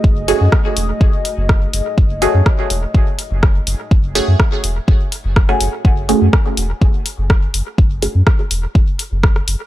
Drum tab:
HH |--o---o---o---o-|--o---o---o---o-|--o---o---o---o-|--o---o---o---o-|
SD |----r-------r---|----r-------r---|----r-------rr--|----r-------r---|
BD |o---o---o---o---|o---o---o---o---|o---o---o---o---|o---o---o---o---|

HH |--o---o---o---o-|
SD |----r-------rr--|
BD |o---o---o---o---|